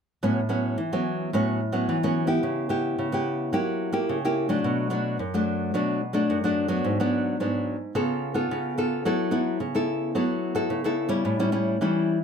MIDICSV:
0, 0, Header, 1, 2, 480
1, 0, Start_track
1, 0, Key_signature, 3, "major"
1, 0, Tempo, 551471
1, 198, Time_signature, 4, 2, 24, 8
1, 10652, End_track
2, 0, Start_track
2, 0, Title_t, "Nylon-string guitar"
2, 0, Program_c, 0, 24
2, 197, Note_on_c, 0, 54, 53
2, 200, Note_on_c, 0, 45, 66
2, 203, Note_on_c, 0, 59, 55
2, 208, Note_on_c, 0, 61, 62
2, 338, Note_off_c, 0, 54, 0
2, 342, Note_off_c, 0, 59, 0
2, 344, Note_off_c, 0, 61, 0
2, 426, Note_on_c, 0, 54, 52
2, 430, Note_on_c, 0, 59, 56
2, 432, Note_on_c, 0, 61, 57
2, 655, Note_off_c, 0, 45, 0
2, 658, Note_off_c, 0, 54, 0
2, 658, Note_off_c, 0, 59, 0
2, 660, Note_off_c, 0, 61, 0
2, 676, Note_on_c, 0, 52, 66
2, 806, Note_on_c, 0, 54, 54
2, 809, Note_on_c, 0, 59, 54
2, 811, Note_on_c, 0, 61, 53
2, 1124, Note_off_c, 0, 59, 0
2, 1125, Note_off_c, 0, 54, 0
2, 1127, Note_off_c, 0, 61, 0
2, 1133, Note_off_c, 0, 52, 0
2, 1161, Note_on_c, 0, 45, 68
2, 1167, Note_on_c, 0, 54, 50
2, 1168, Note_on_c, 0, 59, 46
2, 1172, Note_on_c, 0, 61, 65
2, 1386, Note_off_c, 0, 54, 0
2, 1389, Note_off_c, 0, 59, 0
2, 1391, Note_off_c, 0, 61, 0
2, 1501, Note_on_c, 0, 54, 48
2, 1505, Note_on_c, 0, 59, 49
2, 1509, Note_on_c, 0, 61, 53
2, 1616, Note_off_c, 0, 45, 0
2, 1643, Note_on_c, 0, 52, 65
2, 1711, Note_off_c, 0, 54, 0
2, 1714, Note_off_c, 0, 59, 0
2, 1714, Note_off_c, 0, 61, 0
2, 1770, Note_on_c, 0, 54, 54
2, 1776, Note_on_c, 0, 59, 52
2, 1776, Note_on_c, 0, 61, 60
2, 1966, Note_off_c, 0, 54, 0
2, 1966, Note_off_c, 0, 59, 0
2, 1968, Note_off_c, 0, 61, 0
2, 1976, Note_on_c, 0, 59, 61
2, 1980, Note_on_c, 0, 64, 57
2, 1986, Note_on_c, 0, 67, 65
2, 2097, Note_off_c, 0, 52, 0
2, 2116, Note_on_c, 0, 49, 66
2, 2309, Note_off_c, 0, 59, 0
2, 2310, Note_off_c, 0, 64, 0
2, 2314, Note_off_c, 0, 67, 0
2, 2344, Note_on_c, 0, 59, 54
2, 2350, Note_on_c, 0, 64, 52
2, 2351, Note_on_c, 0, 67, 62
2, 2573, Note_off_c, 0, 49, 0
2, 2598, Note_on_c, 0, 49, 58
2, 2673, Note_off_c, 0, 59, 0
2, 2675, Note_off_c, 0, 64, 0
2, 2676, Note_off_c, 0, 67, 0
2, 2718, Note_on_c, 0, 59, 57
2, 2727, Note_on_c, 0, 64, 48
2, 2733, Note_on_c, 0, 67, 55
2, 3040, Note_off_c, 0, 59, 0
2, 3045, Note_off_c, 0, 64, 0
2, 3046, Note_off_c, 0, 67, 0
2, 3054, Note_off_c, 0, 49, 0
2, 3069, Note_on_c, 0, 54, 61
2, 3071, Note_on_c, 0, 58, 47
2, 3077, Note_on_c, 0, 64, 53
2, 3080, Note_on_c, 0, 67, 55
2, 3395, Note_off_c, 0, 58, 0
2, 3400, Note_off_c, 0, 64, 0
2, 3400, Note_off_c, 0, 67, 0
2, 3416, Note_on_c, 0, 58, 61
2, 3422, Note_on_c, 0, 64, 55
2, 3426, Note_on_c, 0, 67, 63
2, 3530, Note_off_c, 0, 54, 0
2, 3563, Note_on_c, 0, 49, 66
2, 3629, Note_off_c, 0, 58, 0
2, 3632, Note_off_c, 0, 64, 0
2, 3633, Note_off_c, 0, 67, 0
2, 3696, Note_on_c, 0, 58, 55
2, 3699, Note_on_c, 0, 64, 60
2, 3703, Note_on_c, 0, 67, 61
2, 3889, Note_off_c, 0, 58, 0
2, 3891, Note_off_c, 0, 64, 0
2, 3891, Note_off_c, 0, 67, 0
2, 3908, Note_on_c, 0, 54, 58
2, 3914, Note_on_c, 0, 57, 62
2, 3914, Note_on_c, 0, 62, 56
2, 4016, Note_off_c, 0, 49, 0
2, 4042, Note_on_c, 0, 47, 68
2, 4235, Note_off_c, 0, 54, 0
2, 4236, Note_off_c, 0, 57, 0
2, 4238, Note_off_c, 0, 62, 0
2, 4265, Note_on_c, 0, 54, 52
2, 4270, Note_on_c, 0, 57, 47
2, 4273, Note_on_c, 0, 62, 62
2, 4495, Note_off_c, 0, 47, 0
2, 4497, Note_off_c, 0, 54, 0
2, 4498, Note_off_c, 0, 57, 0
2, 4501, Note_off_c, 0, 62, 0
2, 4520, Note_on_c, 0, 42, 63
2, 4647, Note_on_c, 0, 54, 50
2, 4653, Note_on_c, 0, 57, 55
2, 4656, Note_on_c, 0, 62, 59
2, 4965, Note_off_c, 0, 54, 0
2, 4965, Note_off_c, 0, 57, 0
2, 4968, Note_off_c, 0, 62, 0
2, 4975, Note_off_c, 0, 42, 0
2, 4995, Note_on_c, 0, 47, 65
2, 5000, Note_on_c, 0, 54, 50
2, 5001, Note_on_c, 0, 57, 52
2, 5005, Note_on_c, 0, 62, 59
2, 5222, Note_off_c, 0, 54, 0
2, 5224, Note_off_c, 0, 57, 0
2, 5225, Note_off_c, 0, 62, 0
2, 5337, Note_on_c, 0, 54, 53
2, 5342, Note_on_c, 0, 57, 54
2, 5348, Note_on_c, 0, 62, 58
2, 5453, Note_off_c, 0, 47, 0
2, 5482, Note_on_c, 0, 42, 70
2, 5549, Note_off_c, 0, 54, 0
2, 5552, Note_off_c, 0, 57, 0
2, 5553, Note_off_c, 0, 62, 0
2, 5604, Note_on_c, 0, 54, 59
2, 5612, Note_on_c, 0, 57, 49
2, 5614, Note_on_c, 0, 62, 60
2, 5802, Note_off_c, 0, 54, 0
2, 5806, Note_off_c, 0, 62, 0
2, 5807, Note_off_c, 0, 57, 0
2, 5818, Note_on_c, 0, 54, 55
2, 5822, Note_on_c, 0, 59, 59
2, 5825, Note_on_c, 0, 62, 61
2, 5935, Note_off_c, 0, 42, 0
2, 5957, Note_on_c, 0, 44, 64
2, 6081, Note_off_c, 0, 54, 0
2, 6089, Note_off_c, 0, 59, 0
2, 6089, Note_off_c, 0, 62, 0
2, 6091, Note_on_c, 0, 54, 62
2, 6098, Note_on_c, 0, 59, 67
2, 6101, Note_on_c, 0, 62, 65
2, 6406, Note_off_c, 0, 54, 0
2, 6410, Note_off_c, 0, 59, 0
2, 6410, Note_off_c, 0, 62, 0
2, 6413, Note_off_c, 0, 44, 0
2, 6441, Note_on_c, 0, 44, 60
2, 6445, Note_on_c, 0, 54, 49
2, 6445, Note_on_c, 0, 59, 48
2, 6449, Note_on_c, 0, 62, 51
2, 6749, Note_off_c, 0, 54, 0
2, 6751, Note_off_c, 0, 59, 0
2, 6751, Note_off_c, 0, 62, 0
2, 6896, Note_off_c, 0, 44, 0
2, 6920, Note_on_c, 0, 49, 66
2, 6920, Note_on_c, 0, 59, 54
2, 6921, Note_on_c, 0, 65, 53
2, 6927, Note_on_c, 0, 69, 57
2, 7239, Note_off_c, 0, 59, 0
2, 7242, Note_off_c, 0, 65, 0
2, 7242, Note_off_c, 0, 69, 0
2, 7263, Note_on_c, 0, 59, 54
2, 7268, Note_on_c, 0, 65, 49
2, 7271, Note_on_c, 0, 69, 56
2, 7375, Note_off_c, 0, 49, 0
2, 7410, Note_on_c, 0, 49, 68
2, 7592, Note_off_c, 0, 59, 0
2, 7594, Note_off_c, 0, 65, 0
2, 7596, Note_off_c, 0, 69, 0
2, 7638, Note_on_c, 0, 59, 51
2, 7643, Note_on_c, 0, 65, 48
2, 7645, Note_on_c, 0, 69, 56
2, 7859, Note_off_c, 0, 59, 0
2, 7860, Note_off_c, 0, 49, 0
2, 7861, Note_off_c, 0, 65, 0
2, 7861, Note_off_c, 0, 69, 0
2, 7880, Note_on_c, 0, 54, 69
2, 7884, Note_on_c, 0, 59, 57
2, 7885, Note_on_c, 0, 64, 57
2, 7890, Note_on_c, 0, 69, 60
2, 8081, Note_off_c, 0, 59, 0
2, 8083, Note_off_c, 0, 64, 0
2, 8085, Note_off_c, 0, 69, 0
2, 8105, Note_on_c, 0, 59, 53
2, 8110, Note_on_c, 0, 64, 54
2, 8112, Note_on_c, 0, 69, 59
2, 8336, Note_off_c, 0, 54, 0
2, 8337, Note_off_c, 0, 59, 0
2, 8338, Note_off_c, 0, 64, 0
2, 8340, Note_off_c, 0, 69, 0
2, 8357, Note_on_c, 0, 49, 59
2, 8483, Note_on_c, 0, 59, 51
2, 8487, Note_on_c, 0, 64, 54
2, 8492, Note_on_c, 0, 69, 60
2, 8802, Note_off_c, 0, 59, 0
2, 8804, Note_off_c, 0, 64, 0
2, 8807, Note_off_c, 0, 69, 0
2, 8814, Note_off_c, 0, 49, 0
2, 8833, Note_on_c, 0, 54, 61
2, 8838, Note_on_c, 0, 59, 54
2, 8841, Note_on_c, 0, 64, 52
2, 8842, Note_on_c, 0, 69, 56
2, 9159, Note_off_c, 0, 59, 0
2, 9161, Note_off_c, 0, 64, 0
2, 9161, Note_off_c, 0, 69, 0
2, 9181, Note_on_c, 0, 59, 64
2, 9186, Note_on_c, 0, 64, 51
2, 9188, Note_on_c, 0, 69, 64
2, 9293, Note_off_c, 0, 54, 0
2, 9313, Note_on_c, 0, 49, 66
2, 9392, Note_off_c, 0, 59, 0
2, 9393, Note_off_c, 0, 64, 0
2, 9395, Note_off_c, 0, 69, 0
2, 9438, Note_on_c, 0, 59, 59
2, 9444, Note_on_c, 0, 64, 57
2, 9449, Note_on_c, 0, 69, 56
2, 9640, Note_off_c, 0, 59, 0
2, 9643, Note_off_c, 0, 64, 0
2, 9645, Note_off_c, 0, 69, 0
2, 9649, Note_on_c, 0, 55, 54
2, 9654, Note_on_c, 0, 61, 63
2, 9656, Note_on_c, 0, 64, 74
2, 9772, Note_off_c, 0, 49, 0
2, 9790, Note_on_c, 0, 45, 68
2, 9908, Note_off_c, 0, 55, 0
2, 9911, Note_off_c, 0, 61, 0
2, 9912, Note_off_c, 0, 64, 0
2, 9918, Note_on_c, 0, 55, 59
2, 9923, Note_on_c, 0, 61, 60
2, 9923, Note_on_c, 0, 64, 63
2, 10000, Note_off_c, 0, 55, 0
2, 10002, Note_off_c, 0, 61, 0
2, 10003, Note_off_c, 0, 64, 0
2, 10027, Note_on_c, 0, 55, 47
2, 10029, Note_on_c, 0, 61, 53
2, 10034, Note_on_c, 0, 64, 53
2, 10235, Note_off_c, 0, 55, 0
2, 10237, Note_off_c, 0, 61, 0
2, 10237, Note_off_c, 0, 64, 0
2, 10251, Note_off_c, 0, 45, 0
2, 10279, Note_on_c, 0, 52, 57
2, 10283, Note_on_c, 0, 55, 44
2, 10286, Note_on_c, 0, 61, 48
2, 10290, Note_on_c, 0, 64, 54
2, 10590, Note_off_c, 0, 55, 0
2, 10592, Note_off_c, 0, 61, 0
2, 10594, Note_off_c, 0, 64, 0
2, 10652, Note_off_c, 0, 52, 0
2, 10652, End_track
0, 0, End_of_file